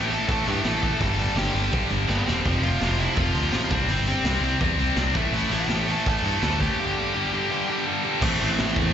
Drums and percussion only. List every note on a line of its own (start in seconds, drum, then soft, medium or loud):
0.11 open hi-hat medium
0.29 kick loud
0.29 open hi-hat medium
0.47 open hi-hat medium
0.65 snare loud
0.65 open hi-hat medium
0.83 kick medium
0.83 open hi-hat medium
1.00 kick loud
1.00 open hi-hat medium
1.19 open hi-hat medium
1.37 snare loud
1.37 open hi-hat medium
1.56 open hi-hat medium
1.72 kick loud
1.72 open hi-hat medium
1.91 open hi-hat soft
2.09 snare medium
2.28 snare medium
2.45 kick medium
2.45 open hi-hat medium
2.63 open hi-hat medium
2.81 snare loud
2.81 open hi-hat medium
2.99 open hi-hat medium
3.16 kick loud
3.16 open hi-hat medium
3.35 open hi-hat medium
3.52 snare loud
3.52 open hi-hat medium
3.70 kick medium
3.70 open hi-hat medium
3.88 open hi-hat medium
4.07 open hi-hat medium
4.25 snare loud
4.25 open hi-hat medium
4.44 open hi-hat medium
4.61 kick loud
4.61 open hi-hat medium
4.78 open hi-hat soft
4.96 snare loud
4.96 open hi-hat medium
5.14 kick medium
5.14 open hi-hat medium
5.34 open hi-hat medium
5.51 open hi-hat medium
5.69 snare loud
5.69 open hi-hat medium
5.88 open hi-hat medium
6.06 kick loud
6.06 open hi-hat medium
6.24 open hi-hat medium
6.42 snare medium
6.42 open hi-hat medium
6.60 kick medium
6.60 open hi-hat medium
8.22 kick loud
8.22 crash loud
8.58 snare loud
8.58 open hi-hat medium
8.76 kick medium